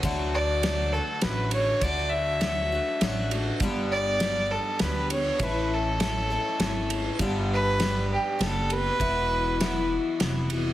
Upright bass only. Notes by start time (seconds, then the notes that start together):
0.03 D2
1.24 A1
1.82 D2
3.01 A1
3.61 G1
4.81 D2
5.40 A1
6.60 G#1
7.19 G1
8.40 F#1
9.00 E1
10.21 F1